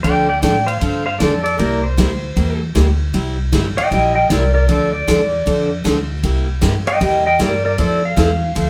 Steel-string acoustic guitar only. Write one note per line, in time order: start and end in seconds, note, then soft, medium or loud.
0.04 0.26 D3 medium
0.04 0.26 F3 medium
0.04 0.26 C4 medium
0.04 0.26 D4 medium
0.04 0.27 A4 medium
0.42 0.54 D3 medium
0.42 0.54 F3 medium
0.42 0.55 C4 medium
0.42 0.55 D4 medium
0.42 0.55 A4 medium
0.81 1.03 D3 medium
0.81 1.04 F3 medium
0.81 1.04 C4 soft
0.81 1.04 D4 medium
0.81 1.04 A4 medium
1.20 1.32 D3 medium
1.20 1.32 F3 medium
1.20 1.32 C4 medium
1.20 1.32 D4 medium
1.20 1.32 A4 medium
1.58 1.80 C3 medium
1.58 1.81 G3 medium
1.58 1.81 A#3 medium
1.58 1.81 E4 medium
1.58 1.81 G4 medium
1.97 2.09 C3 medium
1.97 2.10 G3 medium
1.97 2.10 A#3 medium
1.97 2.10 E4 medium
1.97 2.10 G4 medium
2.36 2.58 C3 soft
2.36 2.59 G3 soft
2.36 2.59 A#3 medium
2.36 2.59 E4 medium
2.36 2.59 G4 medium
2.75 2.87 C3 medium
2.75 2.87 G3 medium
2.75 2.87 A#3 medium
2.75 2.87 E4 medium
2.75 2.87 G4 medium
3.13 3.36 C3 medium
3.13 3.36 G3 medium
3.13 3.36 C4 medium
3.13 3.36 E4 medium
3.13 3.36 G4 medium
3.52 3.64 C3 medium
3.52 3.64 G3 medium
3.52 3.65 C4 medium
3.52 3.65 E4 medium
3.52 3.65 G4 medium
3.91 4.13 C3 medium
3.91 4.14 G3 medium
3.91 4.14 C4 medium
3.91 4.14 E4 medium
3.91 4.14 G4 medium
4.30 4.42 C3 medium
4.30 4.42 G3 medium
4.30 4.42 C4 medium
4.30 4.43 E4 medium
4.30 4.43 G4 medium
4.68 4.91 D3 medium
4.68 4.91 F3 medium
4.68 4.91 C4 medium
4.68 4.91 D4 medium
4.68 4.91 A4 medium
5.07 5.19 D3 medium
5.07 5.19 F3 medium
5.07 5.19 C4 medium
5.07 5.20 D4 medium
5.07 5.20 A4 medium
5.46 5.68 D3 medium
5.46 5.68 F3 medium
5.46 5.68 C4 medium
5.46 5.69 D4 medium
5.46 5.69 A4 medium
5.84 5.96 D3 medium
5.84 5.97 F3 medium
5.84 5.97 C4 medium
5.84 5.97 D4 medium
5.84 5.97 A4 medium
6.23 6.46 C3 medium
6.23 6.46 G3 medium
6.23 6.46 A#3 medium
6.23 6.46 E4 medium
6.23 6.46 G4 medium
6.61 6.74 C3 medium
6.61 6.74 G3 medium
6.61 6.74 A#3 medium
6.61 6.74 E4 medium
6.61 6.74 G4 medium
7.00 7.23 C3 medium
7.00 7.23 G3 medium
7.00 7.23 A#3 medium
7.00 7.23 E4 medium
7.00 7.24 G4 medium
7.39 7.51 C3 medium
7.39 7.51 G3 medium
7.39 7.51 A#3 medium
7.39 7.52 E4 medium
7.39 7.52 G4 medium
7.78 8.00 F3 medium
7.78 8.01 C4 medium
7.78 8.01 E4 medium
7.78 8.01 A4 medium
8.16 8.29 F3 medium
8.16 8.29 C4 medium
8.16 8.29 E4 medium
8.16 8.29 A4 medium
8.55 8.70 F3 medium
8.55 8.70 C4 medium
8.55 8.70 E4 medium
8.55 8.70 A4 medium